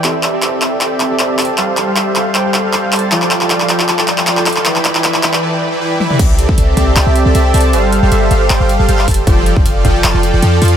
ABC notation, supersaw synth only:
X:1
M:4/4
L:1/16
Q:"Swing 16ths" 1/4=156
K:C
V:1 name="Supersaw synth"
[CGAde]3 [CGAde] [CGAde]2 [CGAde]2 [CGAdg] [CGAde]2 [CGAde] [CGAde]2 [CGAda]2 | [G,GAcf]3 [G,GAcf] [G,GAce]2 [G,GAcf]2 [G,GAcg] [G,GAcf]2 [G,GAcf] [G,GAcf]2 [G,GAca]2 | [F,FAdg]3 [F,FAdg] [F,FAdf]2 [F,FAdg]2 [F,FAda] [F,FAdg]2 [F,FAdg] [F,FAdg]2 [F,FAdc']2 | [E,EBdg]3 [E,EBdg] [E,EBde]2 [E,EBdg]2 [E,EBda] [E,EBdg]2 [E,EBdg] [E,EBdg]2 [E,EBdb]2 |
[CGAde]3 [CGAde] [CGAde]2 [CGAde]2 [CGAdg] [CGAde]2 [CGAde] [CGAde]2 [CGAda]2 | [G,GAcf]3 [G,GAcf] [G,GAce]2 [G,GAcf]2 [G,GAcg] [G,GAcf]2 [G,GAcf] [G,GAcf]2 [G,GAca]2 | [F,FAdg]3 [F,FAdg] [F,FAdf]2 [F,FAdg]2 [F,FAda] [F,FAdg]2 [F,FAdg] [F,FAdg]2 [F,FAdc']2 |]